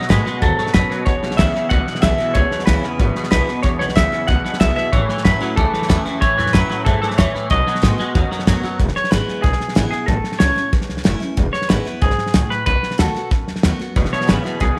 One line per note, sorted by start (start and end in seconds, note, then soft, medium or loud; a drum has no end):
0.00 0.39 B2 medium
0.00 snare soft
0.09 0.21 G#2 medium
0.09 0.24 B2 medium
0.09 0.25 D#3 medium
0.09 0.25 G#3 loud
0.09 0.25 A3 medium
0.09 0.25 B3 medium
0.09 0.24 F#4 loud
0.09 0.43 B4 medium
0.09 kick medium
0.09 snare loud
0.09 hi-hat pedal medium
0.25 0.41 B2 medium
0.25 0.41 G#3 medium
0.25 0.42 B3 medium
0.25 0.41 F#4 medium
0.25 muted upright bass stroke medium
0.25 snare soft
0.42 0.53 D#2 loud
0.42 0.72 G#2 medium
0.42 0.57 B2 medium
0.42 0.57 F#3 loud
0.42 0.75 A4 medium
0.42 kick loud
0.42 snare soft
0.58 0.73 B2 medium
0.58 0.73 F#3 medium
0.58 muted upright bass stroke medium
0.58 snare soft
0.67 snare soft
0.74 1.05 F#2 medium
0.74 0.85 F#2 loud
0.74 0.89 B2 loud
0.74 0.89 F#3 medium
0.74 1.05 B4 medium
0.74 kick medium
0.74 snare loud
0.74 hi-hat pedal medium
0.90 1.05 B2 medium
0.90 1.05 F#3 medium
0.90 muted upright bass stroke medium
0.90 snare soft
1.05 1.17 E1 loud
1.05 1.67 E2 medium
1.05 1.21 E2 medium
1.05 1.21 B2 loud
1.05 1.39 C#5 loud
1.05 kick loud
1.05 snare soft
1.23 1.33 B1 loud
1.23 1.37 E2 medium
1.23 1.38 B2 medium
1.23 snare soft
1.31 snare soft
1.37 1.49 C#2 loud
1.37 1.53 E2 medium
1.37 1.54 C#3 loud
1.37 1.54 E3 loud
1.37 1.54 G#3 medium
1.37 1.55 B3 loud
1.37 1.52 E4 medium
1.37 1.69 E5 loud
1.37 kick medium
1.37 snare loud
1.37 hi-hat pedal medium
1.54 1.70 E2 medium
1.54 1.70 C#3 medium
1.54 1.71 B3 medium
1.54 1.70 E4 medium
1.54 muted upright bass stroke medium
1.54 snare soft
1.69 1.82 C#2 medium
1.69 1.86 E2 loud
1.69 2.32 B2 medium
1.69 1.86 B2 loud
1.69 2.02 F#5 loud
1.69 kick loud
1.69 snare soft
1.86 2.02 E2 medium
1.86 2.02 B2 medium
1.86 muted upright bass stroke medium
1.86 snare soft
1.95 snare soft
2.02 2.14 B1 loud
2.02 2.18 E2 medium
2.02 2.18 B2 medium
2.02 2.18 E3 loud
2.02 2.18 G#3 loud
2.02 2.19 B3 loud
2.02 2.17 E4 loud
2.02 2.36 E5 loud
2.02 kick medium
2.02 snare loud
2.02 hi-hat pedal medium
2.18 2.34 E2 medium
2.18 2.34 B2 medium
2.18 2.35 B3 medium
2.18 2.34 E4 medium
2.18 muted upright bass stroke medium
2.18 snare soft
2.34 2.46 C#2 loud
2.34 2.96 E2 loud
2.34 2.50 E2 medium
2.34 2.50 B2 medium
2.34 2.65 C#5 loud
2.34 kick loud
2.34 snare soft
2.51 2.66 E2 medium
2.51 2.66 B2 medium
2.51 muted upright bass stroke medium
2.51 snare soft
2.59 snare soft
2.66 2.78 C#2 medium
2.66 2.82 E2 medium
2.66 2.82 C#3 medium
2.66 2.83 E3 medium
2.66 2.83 G#3 medium
2.66 2.83 B3 loud
2.66 2.82 E4 loud
2.66 3.30 B4 medium
2.66 kick medium
2.66 snare loud
2.66 hi-hat pedal medium
2.83 2.98 E2 medium
2.83 2.99 C#3 medium
2.83 3.00 B3 soft
2.83 2.99 E4 medium
2.83 muted upright bass stroke medium
2.83 snare soft
2.99 3.10 G#1 medium
2.99 3.14 E2 medium
2.99 3.61 B2 medium
2.99 3.14 B2 medium
2.99 kick loud
2.99 snare soft
3.16 3.31 E2 medium
3.16 3.31 B2 medium
3.16 muted upright bass stroke medium
3.16 snare soft
3.24 snare soft
3.31 3.42 B1 medium
3.31 3.47 E2 medium
3.31 3.47 B2 medium
3.31 3.47 E3 medium
3.31 3.47 G#3 medium
3.31 3.48 B3 loud
3.31 3.46 E4 loud
3.31 3.62 B4 medium
3.31 kick medium
3.31 snare loud
3.31 hi-hat pedal medium
3.48 3.63 E2 medium
3.48 3.63 B2 medium
3.48 3.64 B3 soft
3.48 muted upright bass stroke medium
3.48 snare soft
3.63 3.75 E1 loud
3.63 4.25 E2 medium
3.63 3.79 E2 medium
3.63 3.79 B2 medium
3.63 3.68 C#5 loud
3.63 kick loud
3.63 snare soft
3.79 3.90 B1 medium
3.79 3.95 E2 medium
3.79 3.95 B2 medium
3.79 3.84 C#5 medium
3.79 snare soft
3.89 snare soft
3.95 4.07 C#2 medium
3.95 4.11 E2 medium
3.95 4.11 C#3 medium
3.95 4.11 E3 loud
3.95 4.12 G#3 medium
3.95 4.12 B3 medium
3.95 4.11 E4 medium
3.95 4.27 E5 medium
3.95 kick medium
3.95 snare loud
3.95 hi-hat pedal medium
4.12 4.27 E2 medium
4.12 4.27 C#3 medium
4.12 4.29 B3 soft
4.12 4.28 E4 medium
4.12 muted upright bass stroke medium
4.12 snare soft
4.27 4.39 C#2 medium
4.27 4.43 E2 medium
4.27 4.90 B2 medium
4.27 4.43 B2 loud
4.27 4.60 F#5 medium
4.27 kick loud
4.27 snare soft
4.44 4.59 E2 medium
4.44 4.59 B2 loud
4.44 muted upright bass stroke medium
4.44 snare soft
4.53 snare soft
4.60 4.71 B1 medium
4.60 4.75 E2 medium
4.60 4.75 B2 loud
4.60 4.76 E3 loud
4.60 4.76 G#3 loud
4.60 4.77 B3 loud
4.60 4.75 E4 loud
4.60 4.75 E5 medium
4.60 kick medium
4.60 snare loud
4.60 hi-hat pedal medium
4.76 4.91 E2 medium
4.76 4.92 B2 medium
4.76 4.93 B3 soft
4.76 4.92 E4 medium
4.76 4.93 E5 loud
4.76 muted upright bass stroke medium
4.76 snare soft
4.92 5.04 A1 loud
4.92 5.54 A2 medium
4.92 5.08 E3 medium
4.92 5.24 C#5 loud
4.92 kick loud
4.92 snare soft
5.09 5.24 A2 medium
5.09 5.24 E3 medium
5.09 muted upright bass stroke medium
5.09 snare soft
5.18 snare soft
5.25 5.36 F#2 loud
5.25 5.40 A2 medium
5.25 5.40 E3 medium
5.25 5.40 F#3 loud
5.25 5.41 A3 medium
5.25 5.41 C#4 loud
5.25 5.39 E4 medium
5.25 5.55 B4 medium
5.25 kick medium
5.25 snare loud
5.25 hi-hat pedal medium
5.41 5.56 A2 medium
5.41 5.56 F#3 medium
5.41 5.57 C#4 soft
5.41 5.56 E4 medium
5.41 muted upright bass stroke medium
5.41 snare soft
5.56 5.68 C#2 loud
5.56 6.19 E2 medium
5.56 5.72 A2 medium
5.56 5.72 E3 loud
5.56 6.02 A4 medium
5.56 kick loud
5.56 snare soft
5.73 5.88 A2 medium
5.73 5.88 E3 medium
5.73 muted upright bass stroke medium
5.73 snare soft
5.82 snare soft
5.89 6.00 E2 loud
5.89 6.04 A2 loud
5.89 6.05 E3 loud
5.89 6.04 E3 loud
5.89 6.05 A3 loud
5.89 6.06 C#4 medium
5.89 6.04 E4 loud
5.89 kick medium
5.89 snare loud
5.89 hi-hat pedal medium
6.05 6.20 A2 medium
6.05 6.20 E3 medium
6.05 6.22 C#4 medium
6.05 6.21 E4 medium
6.05 muted upright bass stroke medium
6.05 snare soft
6.21 6.32 A1 loud
6.21 6.36 A2 medium
6.21 6.83 A2 loud
6.21 6.36 E3 medium
6.21 6.51 C#5 loud
6.21 kick loud
6.21 snare soft
6.38 6.49 E2 medium
6.38 6.52 A2 medium
6.38 6.52 E3 medium
6.38 snare soft
6.47 snare soft
6.53 6.65 F#2 loud
6.53 6.68 A2 medium
6.53 6.69 E3 loud
6.53 6.68 F#3 medium
6.53 6.69 A3 loud
6.53 6.70 C#4 loud
6.53 6.68 E4 loud
6.53 6.84 B4 medium
6.53 kick medium
6.53 snare loud
6.53 hi-hat pedal medium
6.69 6.84 A2 medium
6.69 6.85 F#3 medium
6.69 6.86 C#4 soft
6.69 6.85 E4 medium
6.69 muted upright bass stroke medium
6.69 snare soft
6.85 6.97 F#2 medium
6.85 7.17 G#2 medium
6.85 7.00 A2 medium
6.85 7.01 E3 loud
6.85 7.00 A4 medium
6.85 kick loud
6.85 snare soft
7.02 7.17 A2 medium
7.02 7.17 E3 medium
7.02 7.07 A4 medium
7.02 muted upright bass stroke medium
7.02 snare soft
7.11 snare soft
7.18 7.29 E2 loud
7.18 7.49 A2 loud
7.18 7.33 A2 medium
7.18 7.33 E3 loud
7.18 7.50 C#5 loud
7.18 kick medium
7.18 snare loud
7.18 hi-hat pedal medium
7.34 7.49 A2 medium
7.34 7.49 E3 medium
7.34 muted upright bass stroke medium
7.34 snare soft
7.50 7.61 B1 loud
7.50 8.11 B2 loud
7.50 7.65 B2 medium
7.50 7.66 F#3 medium
7.50 8.59 D#5 medium
7.50 kick loud
7.50 snare soft
7.66 7.81 B2 medium
7.66 7.81 F#3 medium
7.66 muted upright bass stroke medium
7.66 snare soft
7.75 snare soft
7.82 7.93 G#2 medium
7.82 7.97 B2 medium
7.82 7.98 D#3 loud
7.82 7.97 G#3 medium
7.82 7.98 A3 loud
7.82 7.98 B3 medium
7.82 7.97 F#4 medium
7.82 kick medium
7.82 snare medium
7.82 hi-hat pedal medium
7.98 8.13 B2 medium
7.98 8.14 G#3 medium
7.98 8.15 B3 medium
7.98 8.14 F#4 medium
7.98 muted upright bass stroke medium
7.98 snare soft
8.15 8.26 D#2 medium
8.15 8.76 F#2 medium
8.15 8.29 B2 medium
8.15 8.30 F#3 medium
8.15 kick loud
8.15 snare soft
8.31 8.46 B2 medium
8.31 8.46 F#3 medium
8.31 muted upright bass stroke medium
8.31 snare soft
8.39 snare soft
8.47 8.58 F#2 medium
8.47 8.62 B2 medium
8.47 8.63 D#3 medium
8.47 8.62 F#3 loud
8.47 8.63 A3 loud
8.47 8.63 B3 loud
8.47 8.62 F#4 loud
8.47 kick medium
8.47 snare loud
8.47 hi-hat pedal loud
8.63 8.78 B2 medium
8.63 8.78 F#3 medium
8.63 8.80 B3 soft
8.63 8.79 F#4 medium
8.63 muted upright bass stroke medium
8.63 snare soft
8.80 8.90 E1 loud
8.80 9.41 E2 medium
8.80 kick loud
8.80 snare soft
8.88 snare soft
8.96 9.11 C#5 medium
8.96 muted upright bass stroke medium
8.96 snare soft
9.04 snare soft
9.11 9.22 G#1 medium
9.11 9.42 E3 medium
9.11 9.42 G#3 loud
9.11 9.43 B3 medium
9.11 9.43 E4 medium
9.11 9.43 B4 loud
9.11 snare loud
9.11 hi-hat pedal medium
9.28 muted upright bass stroke medium
9.28 snare soft
9.42 9.55 B1 loud
9.42 10.05 B2 medium
9.42 9.89 G#4 medium
9.42 kick loud
9.42 snare soft
9.53 snare soft
9.60 muted upright bass stroke medium
9.60 snare soft
9.68 snare soft
9.75 9.87 G#1 medium
9.75 9.91 E3 loud
9.75 9.92 G#3 medium
9.75 9.92 B3 loud
9.75 9.90 E4 loud
9.75 snare loud
9.75 hi-hat pedal medium
9.91 10.08 B3 medium
9.91 10.07 E4 medium
9.91 10.06 G#4 medium
9.91 muted upright bass stroke medium
9.91 snare soft
10.06 10.19 A1 loud
10.06 10.70 A2 medium
10.06 10.41 A4 loud
10.06 kick loud
10.06 snare soft
10.24 muted upright bass stroke medium
10.24 snare soft
10.32 snare soft
10.39 10.51 C#2 medium
10.39 10.56 E3 medium
10.39 10.56 A3 medium
10.39 10.56 C#4 loud
10.39 10.55 E4 loud
10.39 10.70 C#5 medium
10.39 snare loud
10.39 hi-hat pedal medium
10.56 10.73 C#4 soft
10.56 10.72 E4 medium
10.56 muted upright bass stroke medium
10.56 snare soft
10.73 10.84 F#1 medium
10.73 11.34 E2 medium
10.73 kick loud
10.73 snare soft
10.81 snare soft
10.89 11.00 C#2 medium
10.89 snare soft
10.97 snare soft
11.04 11.16 F#1 medium
11.04 11.20 E3 medium
11.04 11.21 A3 medium
11.04 11.21 C#4 medium
11.04 11.19 E4 loud
11.04 snare loud
11.04 hi-hat pedal medium
11.20 11.37 C#4 soft
11.20 11.36 E4 medium
11.20 muted upright bass stroke medium
11.20 snare soft
11.37 11.48 E1 loud
11.37 11.99 E2 loud
11.37 kick loud
11.37 snare soft
11.53 11.69 C#5 medium
11.53 muted upright bass stroke medium
11.53 snare soft
11.62 snare soft
11.69 11.81 G#1 loud
11.69 11.85 E3 medium
11.69 11.85 G#3 medium
11.69 11.86 B3 medium
11.69 11.84 E4 loud
11.69 12.02 B4 loud
11.69 snare loud
11.69 hi-hat pedal medium
11.85 12.02 B3 soft
11.85 12.01 E4 medium
11.85 muted upright bass stroke medium
11.85 snare soft
12.02 12.13 B1 medium
12.02 12.33 G#2 medium
12.02 12.52 G#4 medium
12.02 kick loud
12.02 snare soft
12.10 snare soft
12.18 muted upright bass stroke medium
12.18 snare soft
12.27 snare soft
12.34 12.45 C#2 medium
12.34 12.65 A2 loud
12.34 snare loud
12.34 hi-hat pedal medium
12.50 12.65 B4 medium
12.50 muted upright bass stroke medium
12.50 snare soft
12.66 12.77 B1 loud
12.66 13.28 B2 medium
12.66 12.96 B4 loud
12.66 kick loud
12.66 snare soft
12.83 muted upright bass stroke medium
12.83 snare soft
12.91 snare soft
12.98 13.09 D#2 loud
12.98 13.14 D#3 medium
12.98 13.14 A3 medium
12.98 13.15 B3 medium
12.98 13.13 F#4 loud
12.98 13.29 A4 medium
12.98 snare loud
12.98 hi-hat pedal medium
13.14 13.31 B3 soft
13.14 13.30 F#4 medium
13.14 muted upright bass stroke medium
13.14 snare soft
13.31 13.42 A1 medium
13.31 13.93 F#2 medium
13.31 kick loud
13.31 snare soft
13.48 13.58 D#2 medium
13.48 snare soft
13.56 snare soft
13.63 13.75 D#2 medium
13.63 13.79 D#3 medium
13.63 13.80 A3 loud
13.63 13.80 B3 loud
13.63 13.78 F#4 medium
13.63 snare loud
13.63 hi-hat pedal medium
13.79 13.96 B3 soft
13.79 13.95 F#4 medium
13.79 muted upright bass stroke medium
13.79 snare soft
13.96 14.07 E1 loud
13.96 14.57 E2 medium
13.96 14.11 E2 medium
13.96 14.11 B2 medium
13.96 kick loud
13.96 snare soft
14.05 snare soft
14.12 14.27 E2 medium
14.12 14.27 B2 medium
14.12 14.29 C#5 medium
14.12 muted upright bass stroke medium
14.12 snare soft
14.21 snare soft
14.27 14.39 G#1 medium
14.27 14.43 E2 medium
14.27 14.43 C#3 medium
14.27 14.43 E3 medium
14.27 14.44 G#3 medium
14.27 14.44 B3 medium
14.27 14.43 E4 medium
14.27 14.62 B4 medium
14.27 snare loud
14.27 hi-hat pedal medium
14.44 14.59 E2 medium
14.44 14.59 B2 medium
14.44 14.61 B3 soft
14.44 14.60 E4 medium
14.44 muted upright bass stroke medium
14.44 snare soft
14.60 14.71 B1 medium
14.60 14.75 E2 medium
14.60 14.79 B2 medium
14.60 14.76 B2 loud
14.60 14.79 G#4 medium
14.60 kick loud
14.60 snare soft